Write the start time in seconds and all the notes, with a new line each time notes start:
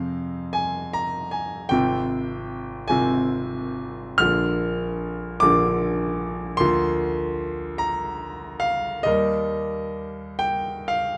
Already playing: F2 C3 C4 G#4 F5
0.53 G#5
0.93 A#5
1.31 G#5
1.69 G#1 C3 C4 F4 G5
2.88 G#1 C3 C4 F4 G#5
4.18 A#1 D3 A#3 F4 F6
5.40 A#1 D3 A#3 F4 D6
6.57 D2 F3 A#3 F4 C6
7.78 A#5
8.60 F5
9.03 D#2 G3 A#3 A#4 D#5
10.39 G5
10.88 F5